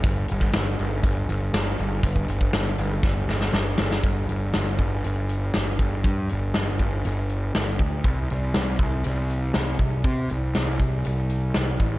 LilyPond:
<<
  \new Staff \with { instrumentName = "Picked electric bass" } { \clef bass \time 4/4 \key c \dorian \tempo 4 = 120 g,,8 g,,8 g,,8 g,,8 g,,8 g,,8 g,,8 g,,8 | g,,8 g,,8 g,,8 g,,8 g,,8 g,,8 g,,8 g,,8 | g,,8 g,,8 g,,8 g,,8 g,,4 g,,8 g,,8 | g,8 g,,8 g,,8 g,,8 g,,4 g,,8 d,8 |
c,8 c,8 c,8 c,8 c,4 c,8 c,8 | c8 c,8 c,8 c,8 c,4 c,8 a,,8 | }
  \new DrumStaff \with { instrumentName = "Drums" } \drummode { \time 4/4 <hh bd>8 hh16 <bd sn>16 <hh sn>8 hh8 <hh bd>8 hh8 <hh sn>8 hh8 | <hh bd>16 bd16 hh16 bd16 <hh sn>8 hh8 <bd sn>8 sn16 sn16 sn8 sn16 sn16 | <hh bd>8 hh8 <hh sn>8 <hh bd>8 hh8 hh8 <hh sn>8 <hh bd>8 | <hh bd>8 hh8 <hh sn>8 <hh bd>8 hh8 hh8 <hh sn>8 <hh bd>8 |
<hh bd>8 hh8 <hh sn>8 <hh bd>8 hh8 hh8 <hh sn>8 <hh bd>8 | <hh bd>8 hh8 <hh sn>8 <hh bd>8 hh8 hh8 <hh sn>8 <hh bd>8 | }
>>